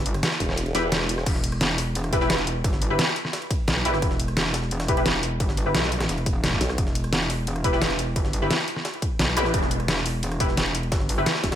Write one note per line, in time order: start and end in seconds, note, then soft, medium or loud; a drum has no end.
0.00 0.22 G1 loud
0.00 0.12 E4 medium
0.00 0.12 G4 medium
0.00 0.12 B4 loud
0.06 closed hi-hat medium
0.06 ride soft
0.14 cross-stick soft
0.14 ride medium
0.23 snare loud
0.23 closed hi-hat medium
0.23 ride medium
0.32 snare medium
0.40 0.73 E1 loud
0.40 kick medium
0.40 open hi-hat medium
0.40 ride medium
0.49 cross-stick soft
0.49 snare soft
0.57 closed hi-hat medium
0.57 ride medium
0.66 ride soft
0.75 1.25 E1 loud
0.75 0.89 E4 loud
0.75 0.89 G4 medium
0.75 0.89 B4 loud
0.75 snare loud
0.75 closed hi-hat medium
0.75 ride medium
0.92 snare loud
0.92 closed hi-hat medium
0.92 ride medium
1.09 closed hi-hat loud
1.09 ride medium
1.18 cross-stick soft
1.18 snare medium
1.26 2.63 E1 loud
1.26 kick loud
1.26 closed hi-hat medium
1.26 crash medium
1.26 ride medium
1.35 snare medium
1.44 closed hi-hat loud
1.44 ride medium
1.52 cross-stick soft
1.52 ride soft
1.61 snare loud
1.61 closed hi-hat medium
1.61 ride medium
1.69 snare medium
1.78 snare soft
1.78 closed hi-hat loud
1.78 open hi-hat medium
1.95 closed hi-hat medium
1.95 ride medium
2.04 cross-stick soft
2.04 ride soft
2.13 2.20 E4 medium
2.13 2.20 G4 medium
2.13 2.20 B4 medium
2.13 kick loud
2.13 closed hi-hat medium
2.13 ride medium
2.21 2.88 E4 medium
2.21 2.88 G4 medium
2.21 2.88 B4 loud
2.21 snare soft
2.30 snare loud
2.30 closed hi-hat medium
2.30 ride medium
2.38 ride soft
2.47 closed hi-hat loud
2.47 ride medium
2.64 2.97 G1 loud
2.64 kick loud
2.64 closed hi-hat medium
2.64 ride medium
2.73 snare medium
2.82 closed hi-hat medium
2.82 ride medium
2.90 2.99 E4 medium
2.90 2.99 G4 medium
2.90 2.99 B4 medium
2.90 cross-stick soft
2.99 snare loud
2.99 closed hi-hat medium
2.99 ride medium
3.07 snare medium
3.16 open hi-hat medium
3.16 ride medium
3.25 cross-stick soft
3.25 snare soft
3.33 snare loud
3.33 closed hi-hat medium
3.33 ride medium
3.42 ride soft
3.51 kick loud
3.51 closed hi-hat loud
3.51 ride medium
3.68 4.01 B1 loud
3.68 snare loud
3.68 closed hi-hat medium
3.68 ride medium
3.85 4.86 E4 loud
3.85 4.86 G4 medium
3.85 4.86 B4 loud
3.85 closed hi-hat loud
3.85 ride medium
3.94 cross-stick medium
3.94 snare medium
4.02 5.39 E1 loud
4.02 kick loud
4.02 closed hi-hat medium
4.02 ride medium
4.11 snare medium
4.19 closed hi-hat medium
4.19 ride medium
4.28 cross-stick soft
4.28 ride soft
4.37 snare loud
4.37 closed hi-hat medium
4.37 ride medium
4.45 snare medium
4.54 snare loud
4.54 closed hi-hat medium
4.54 ride medium
4.63 snare medium
4.71 closed hi-hat medium
4.71 ride medium
4.80 cross-stick soft
4.80 snare loud
4.80 ride medium
4.88 4.96 E4 medium
4.88 4.96 G4 medium
4.88 4.96 B4 medium
4.88 kick loud
4.88 snare medium
4.88 closed hi-hat medium
4.97 5.64 E4 medium
4.97 5.64 G4 medium
4.97 5.64 B4 loud
4.97 ride medium
5.06 snare loud
5.06 closed hi-hat medium
5.06 ride medium
5.14 snare soft
5.23 closed hi-hat loud
5.23 ride medium
5.40 5.73 G1 loud
5.40 kick loud
5.40 closed hi-hat medium
5.40 ride medium
5.49 snare medium
5.57 closed hi-hat medium
5.57 ride medium
5.66 5.75 E4 medium
5.66 5.75 G4 medium
5.66 5.75 B4 medium
5.66 cross-stick soft
5.75 6.08 B1 loud
5.75 snare loud
5.75 closed hi-hat medium
5.75 ride medium
5.83 snare medium
5.92 open hi-hat medium
5.92 ride medium
6.00 cross-stick soft
6.00 snare soft
6.00 snare loud
6.00 ride medium
6.09 6.60 E1 loud
6.09 closed hi-hat medium
6.09 ride medium
6.18 ride soft
6.26 kick loud
6.26 closed hi-hat medium
6.26 ride medium
6.44 snare loud
6.44 closed hi-hat medium
6.44 ride medium
6.52 kick medium
6.61 6.77 B1 loud
6.61 snare loud
6.61 closed hi-hat medium
6.61 ride medium
6.69 cross-stick soft
6.69 snare medium
6.78 8.15 E1 loud
6.78 kick loud
6.78 closed hi-hat medium
6.78 ride medium
6.87 snare medium
6.95 closed hi-hat medium
6.95 ride medium
7.04 cross-stick soft
7.04 ride soft
7.13 snare loud
7.13 closed hi-hat medium
7.13 ride medium
7.21 snare medium
7.30 snare soft
7.30 closed hi-hat medium
7.30 open hi-hat medium
7.47 closed hi-hat medium
7.47 ride medium
7.56 cross-stick soft
7.56 ride soft
7.64 7.72 E4 medium
7.64 7.72 G4 medium
7.64 7.72 B4 medium
7.64 kick loud
7.64 closed hi-hat medium
7.64 ride medium
7.73 8.40 E4 medium
7.73 8.40 G4 medium
7.73 8.40 B4 loud
7.73 snare soft
7.82 snare loud
7.82 closed hi-hat medium
7.82 ride medium
7.90 ride soft
7.99 closed hi-hat medium
7.99 ride medium
8.16 8.49 G1 loud
8.16 kick loud
8.16 closed hi-hat medium
8.16 ride medium
8.25 snare medium
8.33 closed hi-hat medium
8.33 ride medium
8.42 8.51 E4 medium
8.42 8.51 G4 medium
8.42 8.51 B4 medium
8.42 cross-stick soft
8.51 snare loud
8.51 closed hi-hat medium
8.51 ride medium
8.59 snare medium
8.68 open hi-hat medium
8.68 ride medium
8.76 cross-stick soft
8.76 snare soft
8.85 snare loud
8.85 closed hi-hat medium
8.85 ride medium
8.94 ride soft
9.02 kick loud
9.02 closed hi-hat medium
9.02 ride medium
9.19 9.53 B1 loud
9.19 snare loud
9.19 closed hi-hat medium
9.19 ride medium
9.37 10.38 E4 loud
9.37 10.38 G4 medium
9.37 10.38 B4 loud
9.37 closed hi-hat medium
9.37 ride medium
9.37 zap medium
9.45 cross-stick soft
9.45 snare medium
9.54 10.91 E1 medium
9.54 kick loud
9.54 closed hi-hat medium
9.54 ride medium
9.63 snare medium
9.71 closed hi-hat loud
9.71 ride medium
9.80 cross-stick soft
9.80 ride soft
9.88 snare loud
9.88 closed hi-hat medium
9.88 ride medium
9.97 snare medium
10.06 closed hi-hat loud
10.06 open hi-hat medium
10.23 closed hi-hat medium
10.23 ride medium
10.32 cross-stick soft
10.32 ride soft
10.40 10.48 E4 medium
10.40 10.48 G4 medium
10.40 10.48 B4 medium
10.40 kick loud
10.40 closed hi-hat loud
10.40 ride medium
10.49 snare soft
10.57 snare loud
10.57 closed hi-hat medium
10.57 ride medium
10.66 ride soft
10.75 closed hi-hat loud
10.75 ride medium
10.83 ride soft
10.92 11.25 G1 loud
10.92 kick loud
10.92 snare loud
10.92 closed hi-hat medium
10.92 ride medium
11.00 snare soft
11.09 snare soft
11.09 closed hi-hat loud
11.09 open hi-hat medium
11.18 11.26 E4 medium
11.18 11.26 G4 medium
11.18 11.27 B4 medium
11.18 cross-stick soft
11.26 snare loud
11.26 closed hi-hat medium
11.26 ride medium
11.35 snare medium
11.44 11.55 E1 loud
11.44 kick medium
11.44 snare loud
11.44 open hi-hat medium
11.44 ride medium
11.52 snare loud
11.52 ride medium